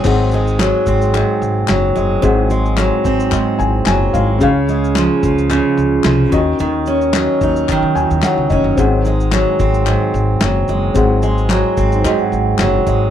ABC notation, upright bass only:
X:1
M:4/4
L:1/16
Q:"Swing 16ths" 1/4=110
K:Abmix
V:1 name="Upright bass" clef=bass
A,,,4- A,,, z A,,,3 z A,,,2 G,,,2 G,,,2 | A,,,4- A,,, z A,,,3 z A,,,2 G,,,2 A,,,2 | D,,4- D,, z D,,3 z D,,2 C,,2 E,,2 | E,,4- E,, z E,,2 z E, E,, E,, z D,, F,,, G,,, |
A,,,4- A,,, z A,,,3 z A,,,2 G,,,2 G,,,2 | A,,,4- A,,, z A,,,3 z A,,,2 G,,,2 A,,,2 |]